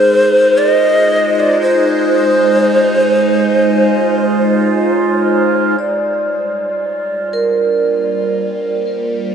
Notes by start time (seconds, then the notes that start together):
Already playing: G#3 D#4 G#4 C5
0.03 F4
0.58 D5
0.69 D#5
1.35 D#5
1.40 D5
1.61 C5
5.79 G3 D5
6.95 D4
7.33 A#4
7.54 A#3